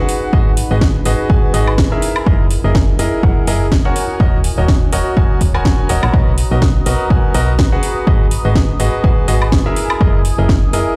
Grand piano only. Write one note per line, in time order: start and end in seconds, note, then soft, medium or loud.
0.00 0.30 F#4 medium
0.00 0.30 G#4 medium
0.00 0.30 B4 medium
0.00 0.30 F#5 medium
0.33 0.50 F#4 medium
0.33 0.50 G#4 medium
0.33 0.50 B4 medium
0.33 0.50 D#5 medium
0.71 0.85 F#4 medium
0.71 0.85 G#4 medium
0.71 0.85 B4 medium
0.71 0.85 D#5 medium
1.06 1.27 F#4 medium
1.06 1.27 G#4 medium
1.06 1.27 B4 medium
1.06 1.27 D#5 loud
1.30 1.51 G#4 medium
1.30 1.51 B4 medium
1.30 1.51 G#5 medium
1.54 1.71 F#4 medium
1.54 1.71 G#4 medium
1.54 1.71 B4 medium
1.54 1.71 D#5 loud
1.92 2.24 E4 medium
1.92 2.24 G#4 medium
1.92 2.24 A#4 medium
1.92 2.24 E5 medium
2.27 2.43 E4 medium
2.27 2.43 G#4 medium
2.27 2.43 A#4 medium
2.27 2.43 D#5 medium
2.64 2.79 E4 medium
2.64 2.79 G#4 medium
2.64 2.79 A#4 medium
2.64 2.79 D#5 medium
2.99 3.20 E4 medium
2.99 3.20 G#4 medium
2.99 3.20 A#4 medium
2.99 3.20 D#5 medium
3.23 3.45 G#4 medium
3.23 3.45 A#4 medium
3.23 3.45 F#5 medium
3.48 3.64 E4 medium
3.48 3.64 G#4 medium
3.48 3.64 A#4 medium
3.48 3.64 D#5 loud
3.85 4.17 F#4 medium
3.85 4.18 A#4 medium
3.85 4.17 C#5 medium
3.85 4.17 F#5 medium
4.20 4.37 F#4 medium
4.20 4.37 A#4 medium
4.20 4.37 C#5 medium
4.20 4.37 D#5 loud
4.58 4.72 F#4 medium
4.58 4.72 A#4 medium
4.58 4.72 C#5 medium
4.58 4.72 D#5 medium
4.93 5.14 F#4 medium
4.93 5.14 A#4 medium
4.93 5.14 C#5 medium
4.93 5.14 D#5 medium
5.17 5.38 F#4 medium
5.17 5.38 A#4 medium
5.17 5.38 C#5 medium
5.17 5.38 G#5 medium
5.55 5.87 F#4 medium
5.55 5.87 A#4 medium
5.55 5.87 C#5 medium
5.55 5.87 G#5 loud
5.89 6.01 F#4 medium
5.89 6.01 A#4 medium
5.89 6.01 C#5 medium
5.89 6.01 D#5 loud
6.03 6.11 F#4 medium
6.03 6.11 A#4 medium
6.03 6.11 C#5 medium
6.03 6.11 F#5 medium
6.14 6.30 F#4 medium
6.14 6.30 A#4 medium
6.14 6.30 B4 medium
6.14 6.30 D#5 medium
6.51 6.66 F#4 medium
6.51 6.66 A#4 medium
6.51 6.66 B4 medium
6.51 6.66 D#5 medium
6.86 7.07 F#4 medium
6.86 7.07 A#4 medium
6.86 7.07 B4 medium
6.86 7.07 D#5 medium
7.10 7.32 F#4 medium
7.10 7.32 A#4 medium
7.10 7.32 B4 medium
7.10 7.32 G#5 medium
7.35 7.51 F#4 medium
7.35 7.51 A#4 medium
7.35 7.51 B4 medium
7.35 7.51 D#5 loud
7.72 8.05 F#4 medium
7.72 8.05 G#4 medium
7.72 8.05 B4 medium
7.72 8.05 F#5 medium
8.07 8.24 F#4 medium
8.07 8.24 G#4 medium
8.07 8.24 B4 medium
8.07 8.24 D#5 medium
8.45 8.60 F#4 medium
8.45 8.60 G#4 medium
8.45 8.60 B4 medium
8.45 8.60 D#5 medium
8.80 9.01 F#4 medium
8.80 9.01 G#4 medium
8.80 9.01 B4 medium
8.80 9.01 D#5 loud
9.04 9.26 F#4 medium
9.04 9.26 G#4 medium
9.04 9.26 B4 medium
9.04 9.26 G#5 medium
9.28 9.45 F#4 medium
9.28 9.45 G#4 medium
9.28 9.45 B4 medium
9.28 9.45 D#5 loud
9.66 9.98 E4 medium
9.66 9.98 G#4 medium
9.66 9.98 A#4 medium
9.66 9.98 E5 loud
10.01 10.17 E4 medium
10.01 10.17 G#4 medium
10.01 10.17 A#4 medium
10.01 10.17 D#5 medium
10.38 10.53 E4 medium
10.38 10.53 G#4 medium
10.38 10.53 A#4 medium
10.38 10.53 D#5 medium
10.73 10.94 E4 medium
10.73 10.94 G#4 medium
10.73 10.94 A#4 medium
10.73 10.94 D#5 medium